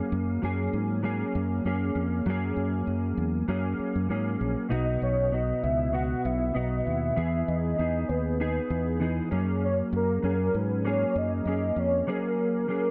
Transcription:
Already playing: F#3 A#3 C#4 G#4
0.12 F#2
0.42 F#2 F#3 A#3 C#4 G#4
0.73 G#2
1.03 F#3 A#3 C#4 G#4
1.35 F#2
1.65 F#2 A#3 C#4 G#4
1.95 F2
2.26 F#2 F#3 A#3 C#4
2.30 G#4
2.57 F#2
2.87 F#2
3.17 E2
3.48 F#2 F#3 A#3 C#4 G#4
3.79 muted fingered electric bass stroke
3.95 F#2
4.09 G#2 F#3 A#3 C#4 G#4
4.41 A#1
4.69 B1 B2 B3 D#4 F#4 D#5
5.02 B1 C#5
5.31 B2 B3 F#4 D#5
5.63 C#2 E5
5.92 B2 B3 F#4 F#5
6.25 B1 E5
6.54 B1 B2 B3 F#4 D#5
6.85 D#2 E5
7.16 E2 E3 B3 G#4
7.47 E2 D#5
7.78 E2 B3 D#4 G#4
8.08 D#2 B4
8.40 B3 D#4 G#4
8.70 E2
9.00 E3 B3 D#4 G#4
9.31 F#2 F#3 A#3 C#4 G#4
9.64 C#5
9.93 F#2 A#4
10.22 F#2 F#3 C#4 G#4
10.54 G#2 B4
10.85 F#3 A#3 C#4 G#4 C#5
11.16 F#2 D#5
11.45 F#2 A#3 C#4 G#4
11.76 F2 C#5
12.07 F#3 A#3 C#4 G#4 A#4
12.68 F#3 A#3 C#4 G#4

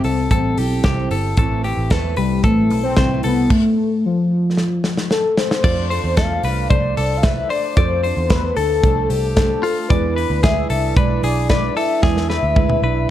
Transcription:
Already playing: C4
0.04 C2 G3 C4 E4 A4, open hi-hat
0.31 A1 G3 C4 E4 A4, kick, closed hi-hat
0.57 B1 G3 C4 E4 G4 A4, open hi-hat
0.84 C2 C3 E3 G3 C4 E4 G4 A4, kick, snare, closed hi-hat
1.11 G1 G3 C4 E4 A4, open hi-hat
1.37 A1 A2 E3 A3 C4 E4 A4 B4, kick, closed hi-hat
1.63 A3 C4 E4 G4 B4, open hi-hat
1.77 A1
1.90 E2 A2 E3 A3 C4 E4 A4 B4, kick, snare, closed hi-hat
2.16 C2 G3 A3 C4 E4 B4, open hi-hat
2.43 A1 A3 C4 E4 A4 B4, kick, closed hi-hat
2.70 B1 A3 C4 E4 B4, open hi-hat
2.84 C4
2.96 C2 A2 E3 A3 C4 E4 B4 C5, kick, snare, closed hi-hat
3.22 C2 A3 B3 C4 E4 A4 B4, open hi-hat
3.50 A3, kick, crash
4.06 F3
4.57 snare
4.84 snare
4.97 snare
5.11 A4, snare
5.37 C5, snare
5.51 snare
5.62 F2 F3 A3 D4 F4 A4 C5 D5, kick, crash
5.89 D4 A4 C5, open hi-hat
6.04 E2
6.17 A3 D4 A4 C5 F5, kick, snare, closed hi-hat
6.43 C2 D4 A4 B4 C5, open hi-hat
6.69 C2 F3 A3 D4 A4 C5 D5, kick, closed hi-hat
6.97 C2 D4 A4 C5, open hi-hat
7.17 F5
7.22 A3 D4 A4 B4 C5 E5, kick, snare, closed hi-hat
7.49 D4 A4 C5 D5, open hi-hat
7.76 F2 F3 A3 D4 F4 A4 C5 D5, kick, closed hi-hat
8.03 D4 A4 C5, open hi-hat
8.17 E2
8.29 A3 D4 A4 B4 C5, kick, snare, closed hi-hat
8.56 D2 D4 A4 C5, open hi-hat
8.83 C2 F3 A3 D4 A4 C5, kick, closed hi-hat
9.09 C2 D4 G4 A4 C5, open hi-hat
9.36 A3 D4 A4 C5, kick, snare, closed hi-hat
9.63 D4 F4 A4 C5, open hi-hat
9.89 E2 E3 G#3 D4 E4 G#4 B4 D5, kick, closed hi-hat
10.16 D4 E4 B4, open hi-hat
10.30 D2
10.42 G#3 D4 E4 G#4 B4 E5, kick, snare, closed hi-hat
10.69 C2 D4 E4 A4 B4, open hi-hat
10.96 B1 E3 G#3 D4 E4 B4 D5, kick, closed hi-hat
11.22 B1 D4 E4 G#4 B4, open hi-hat
11.49 G#3 D4 E4 B4 D5, kick, snare, closed hi-hat
11.75 D4 E4 A4 B4 E5, open hi-hat
12.01 E2 E3 G#3 D4 E4 G#4 B4 D5, kick, snare
12.17 snare
12.28 D4 E4 B4, snare
12.43 D2
12.55 G#3 D4 E4 B4, kick
12.70 high tom
12.82 B1 D4 E4 B4

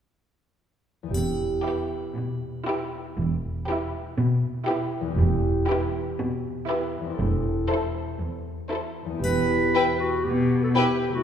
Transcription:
1.03 E2 B3
1.08 E4 G4
1.14 E1 E2, triangle
1.65 E4 G4 B4
2.16 B2
2.67 E4 G4 B4
3.17 E1 E2
3.67 E4 G4 B4
4.18 B2
4.68 E4 G4 B4
5.01 E2
5.05 B3
5.10 E4
5.14 E1 G4
5.19 E2
5.69 E4 G4 B4
6.18 B2
6.68 E4 G4 B4
7.01 E2
7.05 C4
7.10 E4
7.14 A4
7.18 E1 E2
7.69 E4 A4 C5
8.20 E2
8.71 E4 A4 C5
9.05 E2
9.10 B3
9.14 E4
9.19 G4 B4
9.23 E1 E2, triangle
9.75 E4 B4 G5
10.00 F#4
10.25 B2 G4
10.64 A4
10.75 E4 G4 B4 G5
11.08 C3
11.13 A3 F#4
11.17 E4

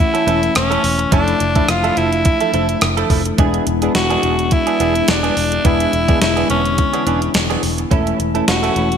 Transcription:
Already playing: E3 A3 C#4 E4
0.00 E4
0.14 A3 C#4 E4 A4, closed hi-hat
0.26 E1 E3 A3 C#4 E4 A4, closed hi-hat
0.42 muted clean electric guitar stroke, closed hi-hat
0.55 E1 C#4, muted clean electric guitar stroke, cross-stick, closed hi-hat
0.70 A3 C#4 E4 A4, closed hi-hat
0.83 E1, muted clean electric guitar stroke, open hi-hat
0.99 muted clean electric guitar stroke, closed hi-hat
1.11 F1 F3 A3 D4 E4 A4, kick, closed hi-hat
1.28 closed hi-hat
1.40 F1, muted clean electric guitar stroke, closed hi-hat
1.55 E3 F3 A3 D4 E4 A4, kick, closed hi-hat
1.62 F3
1.68 F1 F4, cross-stick, closed hi-hat
1.84 F3 A3 E4 A4, closed hi-hat
1.97 F1 F3 A3 E4 A4, closed hi-hat
2.13 closed hi-hat
2.25 muted clean electric guitar stroke, kick, closed hi-hat
2.40 F3 A3 E4 A4, closed hi-hat
2.53 F1 F3 A3 D4 E4 A4, closed hi-hat
2.69 muted clean electric guitar stroke, closed hi-hat
2.81 F1, muted clean electric guitar stroke, cross-stick, closed hi-hat
2.97 F3 A3 E4 A4, closed hi-hat
3.10 F1 F3 A3 E4 A4, kick, open hi-hat
3.25 muted clean electric guitar stroke, closed hi-hat
3.38 E1 E3 G#3 B3 D4 E4 G#4, kick, closed hi-hat
3.54 closed hi-hat
3.67 E1, muted clean electric guitar stroke, closed hi-hat
3.82 E3 G#3 B3 D4 E4 G#4, closed hi-hat
3.95 E1 F#4, snare, closed hi-hat
4.10 E3 B3 D4 G#4, closed hi-hat
4.23 E1 E3 B3 D4 G#4, closed hi-hat
4.39 muted clean electric guitar stroke, closed hi-hat
4.51 E4, muted clean electric guitar stroke, kick, closed hi-hat
4.67 E3 B3 D4 G#4, closed hi-hat
4.79 E1 E3 G#3 B3 D4 E4 G#4, closed hi-hat
4.95 closed hi-hat
5.08 E1 D4, muted clean electric guitar stroke, snare, closed hi-hat
5.23 E3 B3 D4 G#4, closed hi-hat
5.36 E1, muted clean electric guitar stroke, open hi-hat
5.52 muted clean electric guitar stroke, closed hi-hat
5.64 E1 E3 G#3 B3 D4 E4 G#4, kick, closed hi-hat
5.80 closed hi-hat
5.93 E1, muted clean electric guitar stroke, closed hi-hat
6.08 D3 E3 G#3 B3 D4 E4 G#4, kick, closed hi-hat
6.22 E1 E4, snare, closed hi-hat
6.36 E3 B3 D4 G#4, closed hi-hat
6.49 E1 E3 B3 C#4 D4 G#4, closed hi-hat
6.65 closed hi-hat
6.78 muted clean electric guitar stroke, kick, closed hi-hat
6.93 E3 B3 D4 G#4, closed hi-hat
7.06 E1 E3 G#3 B3 D4 E4 G#4, closed hi-hat
7.22 muted clean electric guitar stroke, closed hi-hat
7.34 E1, muted clean electric guitar stroke, snare, closed hi-hat
7.50 E3 B3 D4 G#4, closed hi-hat
7.63 E1, muted clean electric guitar stroke, open hi-hat
7.78 muted clean electric guitar stroke, closed hi-hat
7.91 E1 E3 A3 C#4 E4 A4, kick, closed hi-hat
8.07 closed hi-hat
8.19 E1, muted clean electric guitar stroke, closed hi-hat
8.34 E3 A3 C#4 E4 A4, closed hi-hat
8.48 E1 F#4, snare, closed hi-hat
8.63 A3 C#4 E4 A4, closed hi-hat
8.75 E1 A3 C#4 E4 A4, closed hi-hat
8.92 muted clean electric guitar stroke, closed hi-hat

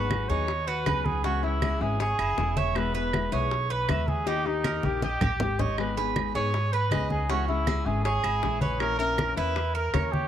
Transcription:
Already playing: G#1 F#4 B4
0.10 F#3 B3 D#4 G#4, high bongo, high conga, claves
0.29 D#2 F#3 B3 D#4 G#4 C#5, high conga
0.48 muted nylon-string guitar stroke, high bongo, high conga
0.67 F#4 B4, high conga
0.86 C#2 F#3 B3 D#4 G#4 B4, high bongo, low bongo, high conga, claves
1.06 G#4, high conga
1.23 C#3 E3 G#3 C#4 E4 F#4, high bongo, high conga
1.43 E3 G#3 C#4 E4, high bongo, high conga
1.62 E3 G#3 C#4 E4 G#4, high bongo, high conga, claves
1.81 G#1 E3 G#3 C#4 E4 G#4, high conga
2.00 G#4 C#5, muted nylon-string guitar stroke, high bongo, high conga
2.19 F#1 E4, high bongo, high conga, claves
2.37 E1 E3 G#3 C#4 E4, high bongo, low bongo, high conga
2.57 C#5 E5, high bongo, high conga
2.75 B2 E3 G#3 B3 E4 B4, high bongo, high conga, claves
2.94 E3 G#3 B3 E4 B4, high conga
3.13 E3 G#3 B3 E4, high bongo, high conga, claves
3.32 B1 E3 G#3 B3 E4 G#4 C#5, high conga
3.51 muted nylon-string guitar stroke, high bongo, high conga
3.70 B4, high conga
3.89 D#2 G#3 B3 E4 E5, high bongo, low bongo, high conga, claves
4.08 G#4, high conga
4.26 D#3 A#3 D#4 G4, high bongo, high conga
4.45 A#3 D#4 G4, high conga
4.64 D#3 A#3 D#4 G4 A#4, high bongo, high conga, claves
4.83 A#1 A#3 D#4 G4, low bongo, high conga
5.02 G4 D#5, muted nylon-string guitar stroke, low bongo, high conga
5.21 A#1 G4, low bongo, low conga, claves
5.40 G#1 D#3 A#3 D#4 G4, low bongo, low conga
5.59 C#5 D#5, low bongo, low conga
5.78 D#3 G#3 B3 D#4 G#4 B4, high bongo, high conga, claves
5.97 G#3 B3 D#4 G#4 B4, high conga
6.16 G#3 B3 D#4 G#4, high bongo, high conga, claves
6.35 G#2 G#3 B3 D#4 G#4 C#5, high conga
6.53 muted nylon-string guitar stroke, high bongo, high conga
6.72 B4, high conga
6.91 C#2 G#3 B3 D#4 G#4 D#5, high bongo, low bongo, high conga, claves
7.10 G#4, high conga
7.29 C#3 E3 G#3 C#4 E4 F#4, high bongo, high conga
7.48 E3 G#3 C#4 E4, high bongo, high conga
7.67 E3 G#3 C#4 E4 G#4, high bongo, high conga, claves
7.85 G#1 E3 G#3 C#4 E4 G#4, high conga
8.04 G#4 C#5, muted nylon-string guitar stroke, high bongo, high conga
8.24 G#1 E4, high bongo, high conga, claves
8.42 A#1 E3 G#3 C#4 E4, high bongo, low bongo, high conga
8.61 B4 C#5, high bongo, high conga
8.80 E3 A#3 C#4 E4 A#4, high bongo, high conga, claves
8.99 A#3 C#4 E4 A#4, high conga
9.18 E3 A#3 C#4 E4, high bongo, high conga, claves
9.37 E2 A#3 C#4 E4 B4, high conga
9.56 muted nylon-string guitar stroke, high bongo, high conga
9.75 A#4, high conga
9.94 D#2 A#3 C#4 E4 C#5, high bongo, low bongo, high conga, claves
10.12 G4, high conga

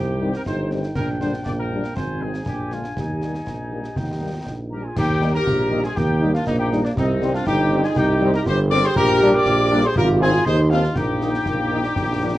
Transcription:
Already playing: C2 C4 D#4 G4 G5
0.21 D#3 G3 C4
0.34 A#4, snare
0.46 G1 D#4 C5, concert bass drum, snare
0.71 D#3 G3 C4, snare
0.83 snare
0.96 A#1 D4 A#4 G5, concert bass drum, snare, crash
1.21 D3 G3 D4 C5, snare
1.34 snare
1.45 A#1 A#3 D5, concert bass drum, snare
1.58 A#4
1.71 D3 G3 D4
1.84 snare
1.95 G#1 C4 D#4 C5 G#5, concert bass drum, snare
2.21 D#3 G#3 C4 G#4
2.34 snare
2.46 A#1 D4 G4, concert bass drum, snare
2.71 D3 G#3 A#3 F4, snare
2.84 snare
2.95 D#2 D#4 G4, concert bass drum, snare
3.21 D#3 G3 A#3, snare
3.34 snare
3.46 A#1 D#4, concert bass drum, snare
3.71 D#3 G3 A#3
3.84 G4, snare
3.96 D#2 G5, concert bass drum, snare
4.20 D#3 G3 A#3
4.33 F4
4.46 A#1 D#4, concert bass drum, snare
4.70 D#3 G3 A#3 G4 A#4 A#5
4.83 D4 F4 G#4 G#5
4.95 D#2 D#4 G4 G5, concert bass drum, snare, crash
5.21 D#3 G3 A#3 D#4, snare
5.34 G4 A#4 A#5, snare
5.45 A#1 G3, concert bass drum, snare
5.70 D#3 G3 A#3 D#4
5.84 F4 G#4 G#5, snare
5.95 D#2 A#3 D#4 G4 G5, concert bass drum, snare
6.20 D#3 G3 A#3 D#4
6.34 D4 F4 F5, snare
6.46 A#1 A#3 D#4 D#5, concert bass drum, snare
6.58 D#4 G4 G5
6.70 D#3 G3 A#3 D#4, snare
6.84 A#3 D4 D5, snare
6.96 C2 C4 D#4 D#5, concert bass drum, snare
7.21 D#3 G3 C4, snare
7.33 D4 F4 F5, snare
7.46 G1 D#4 G4 G5, concert bass drum, snare
7.71 D#3 G3 C4
7.84 F4 G#4 G#5, snare
7.96 C2 D#4 G4 G5, concert bass drum, snare
8.21 D#3 G3 C4
8.33 G4 A#4 A#5, snare
8.46 G1 G4 C5 C6, concert bass drum, snare
8.70 D#3 G3 C4 A#4 D5 D6, snare
8.84 G#4 C5 C6, snare
8.96 A#1 G4 A#4 A#5, concert bass drum, snare, crash
9.21 G3 A#3 D4, snare
9.33 A#4 D5 D6, snare
9.46 A#1, concert bass drum, snare
9.71 G3 A#3 D4
9.83 G#4 C5 C6, snare
9.96 G#1 F4 G4 A#4 A#5, concert bass drum, snare
10.20 D#3 C4 D#4 F4 G#4 G#5
10.33 snare
10.45 D#2 D#4 G#4 C5 C6, concert bass drum, snare
10.70 D#3 C4 D4 D#4 F4 F5, snare
10.83 snare
10.95 A#1 A#3 D#4 G4 G5, concert bass drum, snare
11.21 D#3 A#3 D#4, snare
11.34 snare
11.45 A#1 A#3, concert bass drum, snare
11.71 D#3 A#3 D#4
11.84 D4, snare
11.96 A#1, concert bass drum, snare
12.22 F3 A#3 D4

